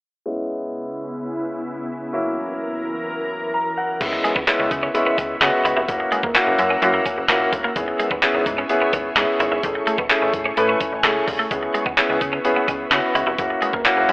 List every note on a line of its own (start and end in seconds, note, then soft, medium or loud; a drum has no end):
0.26 2.12 C#3 medium
0.26 2.10 G#3 medium
0.26 2.12 B3 medium
0.26 2.10 B3 medium
0.26 2.10 C#4 medium
0.26 2.12 E4 medium
0.26 2.10 E4 medium
2.13 3.99 F#2 medium
2.13 3.99 E3 medium
2.13 3.97 F#3 medium
2.13 3.97 A#3 medium
2.13 3.97 C#4 medium
2.13 3.98 E4 medium
2.13 3.99 A#4 medium
3.54 3.76 A#5 medium
3.77 3.99 F#5 medium
4.01 4.19 C#2 loud
4.01 4.39 G#3 medium
4.01 4.39 B3 medium
4.01 4.39 C#4 medium
4.01 4.39 E4 medium
4.01 5.86 B4 medium
4.01 5.87 E5 medium
4.01 5.86 C#6 medium
4.01 kick loud
4.01 closed hi-hat medium
4.01 crash loud
4.01 impact medium
4.13 muted clean electric guitar stroke soft
4.24 4.33 G#3 medium
4.24 closed hi-hat medium
4.36 4.45 C#2 medium
4.36 4.45 B3 medium
4.36 kick loud
4.47 4.86 G#3 medium
4.47 4.86 B3 medium
4.47 4.86 C#4 medium
4.47 4.57 C#4 medium
4.47 4.86 E4 loud
4.47 clap loud
4.47 closed hi-hat medium
4.60 4.69 C#2 loud
4.60 muted clean electric guitar stroke soft
4.71 4.89 C#3 medium
4.71 kick loud
4.71 closed hi-hat medium
4.83 4.92 C#4 medium
4.94 5.33 G#3 medium
4.94 5.33 B3 medium
4.94 5.33 C#4 medium
4.94 5.33 E4 loud
4.94 muted clean electric guitar stroke soft
4.94 closed hi-hat medium
5.07 5.15 B3 medium
5.18 5.36 C#2 medium
5.18 5.27 C#4 medium
5.18 kick medium
5.18 closed hi-hat medium
5.41 5.51 C#3 loud
5.41 5.79 G#3 medium
5.41 5.80 B3 medium
5.41 5.80 C#4 medium
5.41 5.80 F#4 medium
5.41 muted clean electric guitar stroke soft
5.41 clap loud
5.41 closed hi-hat medium
5.65 5.74 C#2 medium
5.65 5.74 E4 medium
5.65 closed hi-hat medium
5.77 5.86 F1 medium
5.77 5.86 E4 medium
5.88 6.07 F#1 loud
5.88 6.26 A#3 medium
5.88 6.27 C#4 medium
5.88 6.27 E4 medium
5.88 6.27 F#4 medium
5.88 7.74 A#4 medium
5.88 7.74 F#5 medium
5.88 7.74 E6 medium
5.88 kick loud
5.88 closed hi-hat medium
6.00 muted clean electric guitar stroke soft
6.12 6.21 G#3 medium
6.12 closed hi-hat medium
6.23 6.33 F#1 medium
6.23 6.32 A#3 medium
6.23 kick loud
6.35 6.73 A#3 loud
6.35 6.44 C#4 medium
6.35 6.73 C#4 medium
6.35 6.74 E4 medium
6.35 6.74 F#4 loud
6.35 clap loud
6.35 closed hi-hat medium
6.47 6.56 F#1 medium
6.47 muted clean electric guitar stroke soft
6.59 6.77 F#2 medium
6.59 closed hi-hat medium
6.70 6.79 C#4 medium
6.82 7.00 F#2 loud
6.82 7.20 A#3 medium
6.82 7.20 C#4 medium
6.82 7.20 E4 medium
6.82 7.21 F#4 medium
6.82 muted clean electric guitar stroke soft
6.82 closed hi-hat medium
6.94 7.03 A#3 medium
7.06 7.15 C#4 medium
7.06 kick medium
7.06 closed hi-hat medium
7.17 7.26 F#1 medium
7.29 7.47 A#1 loud
7.29 7.67 A#3 medium
7.29 7.38 A#3 medium
7.29 7.67 C#4 medium
7.29 7.67 E4 medium
7.29 7.67 F#4 medium
7.29 clap loud
7.29 closed hi-hat medium
7.53 7.71 G1 medium
7.53 muted clean electric guitar stroke soft
7.53 kick loud
7.53 closed hi-hat medium
7.64 7.73 A#3 medium
7.76 7.94 G#1 loud
7.76 8.14 B3 medium
7.76 8.14 C#4 medium
7.76 8.14 E4 medium
7.76 9.62 G#4 medium
7.76 8.14 G#4 medium
7.76 9.62 E5 medium
7.76 13.35 C#6 medium
7.76 kick loud
7.76 closed hi-hat medium
7.88 muted clean electric guitar stroke soft
8.00 8.08 G#3 medium
8.00 closed hi-hat medium
8.11 8.20 G#1 loud
8.11 8.20 B3 medium
8.11 kick medium
8.22 8.61 B3 medium
8.22 8.61 C#4 medium
8.22 8.32 C#4 medium
8.22 8.61 E4 medium
8.22 8.61 G#4 loud
8.22 clap loud
8.22 closed hi-hat loud
8.35 8.44 G#1 medium
8.35 muted clean electric guitar stroke soft
8.46 8.64 G#2 loud
8.46 kick loud
8.46 closed hi-hat medium
8.58 8.67 C#4 medium
8.69 9.08 B3 medium
8.69 9.08 C#4 medium
8.69 9.08 E4 medium
8.69 9.08 G#4 loud
8.69 muted clean electric guitar stroke soft
8.69 closed hi-hat medium
8.82 8.90 B3 medium
8.93 9.11 G#1 loud
8.93 9.02 C#4 medium
8.93 kick medium
8.93 closed hi-hat medium
9.16 9.26 G#2 loud
9.16 9.55 B3 medium
9.16 9.55 C#4 medium
9.16 9.55 E4 medium
9.16 9.55 G#4 medium
9.16 muted clean electric guitar stroke soft
9.16 clap loud
9.16 closed hi-hat medium
9.40 9.49 G#1 medium
9.40 9.49 E4 medium
9.40 closed hi-hat medium
9.51 9.61 G#1 medium
9.51 9.61 E4 medium
9.63 9.82 A1 loud
9.63 10.01 A3 medium
9.63 11.49 A3 medium
9.63 10.02 C#4 medium
9.63 10.02 E4 medium
9.63 10.02 G#4 medium
9.63 11.49 G#5 medium
9.63 kick loud
9.63 closed hi-hat medium
9.75 muted clean electric guitar stroke soft
9.87 9.96 A3 medium
9.87 closed hi-hat medium
9.98 10.07 A1 medium
9.98 10.08 B3 medium
9.98 kick medium
10.10 10.48 A3 loud
10.10 10.48 C#4 medium
10.10 10.19 C#4 medium
10.10 10.48 E4 medium
10.10 10.49 G#4 loud
10.10 clap loud
10.10 closed hi-hat medium
10.22 10.35 A1 medium
10.22 muted clean electric guitar stroke soft
10.33 10.52 A2 loud
10.33 kick loud
10.33 closed hi-hat medium
10.46 10.54 C#4 medium
10.57 10.75 A2 loud
10.57 10.95 A3 medium
10.57 10.95 C#4 medium
10.57 10.95 E4 medium
10.57 10.96 B4 loud
10.57 muted clean electric guitar stroke soft
10.57 closed hi-hat medium
10.69 10.78 B3 medium
10.81 10.90 C#4 medium
10.81 kick medium
10.81 closed hi-hat medium
10.92 11.01 A1 medium
11.04 11.22 C#2 loud
11.04 11.42 A3 medium
11.04 11.13 A3 medium
11.04 11.42 C#4 medium
11.04 11.42 E4 medium
11.04 11.42 G#4 medium
11.04 clap loud
11.04 closed hi-hat medium
11.28 11.46 C2 loud
11.28 muted clean electric guitar stroke soft
11.28 kick loud
11.28 open hi-hat medium
11.39 11.48 A3 medium
11.51 11.69 C#2 loud
11.51 11.89 B3 medium
11.51 11.89 C#4 medium
11.51 11.89 E4 medium
11.51 11.89 G#4 medium
11.51 13.37 B4 medium
11.51 13.37 E5 medium
11.51 kick loud
11.51 closed hi-hat medium
11.63 muted clean electric guitar stroke soft
11.74 11.83 G#3 medium
11.74 closed hi-hat medium
11.86 11.95 C#2 medium
11.86 11.95 B3 medium
11.86 kick medium
11.98 12.36 B3 medium
11.98 12.36 C#4 medium
11.98 12.07 C#4 medium
11.98 12.36 E4 medium
11.98 12.36 G#4 loud
11.98 clap loud
11.98 closed hi-hat medium
12.10 12.19 C#2 loud
12.10 muted clean electric guitar stroke soft
12.21 12.39 C#3 loud
12.21 kick loud
12.21 closed hi-hat medium
12.33 12.42 C#4 medium
12.45 12.83 B3 medium
12.45 12.83 C#4 medium
12.45 12.83 E4 medium
12.45 12.83 G#4 loud
12.45 muted clean electric guitar stroke soft
12.45 closed hi-hat medium
12.56 12.65 B3 medium
12.68 12.86 C#2 medium
12.68 12.77 C#4 medium
12.68 kick medium
12.68 closed hi-hat medium
12.91 13.01 C#3 loud
12.91 13.30 B3 medium
12.91 13.30 C#4 medium
12.91 13.30 E4 medium
12.91 13.30 F#4 medium
12.91 muted clean electric guitar stroke soft
12.91 clap loud
12.91 closed hi-hat medium
13.15 13.24 C#2 medium
13.15 13.24 E4 medium
13.15 closed hi-hat medium
13.27 13.36 F1 loud
13.27 13.36 E4 medium
13.38 13.57 F#1 loud
13.38 13.77 A#3 medium
13.38 13.77 C#4 medium
13.38 13.77 E4 medium
13.38 13.77 F#4 medium
13.38 14.12 A#4 medium
13.38 14.12 F#5 medium
13.38 14.12 E6 medium
13.38 kick loud
13.38 closed hi-hat medium
13.50 muted clean electric guitar stroke soft
13.62 13.71 G#3 medium
13.62 closed hi-hat medium
13.73 13.83 F#1 medium
13.73 13.83 A#3 medium
13.73 kick medium
13.85 14.12 A#3 loud
13.85 13.94 C#4 medium
13.85 14.12 C#4 medium
13.85 14.12 E4 medium
13.85 14.12 F#4 loud
13.85 clap loud
13.85 closed hi-hat medium
13.97 14.06 F#1 medium
13.97 muted clean electric guitar stroke soft
14.09 14.12 F#2 medium
14.09 closed hi-hat medium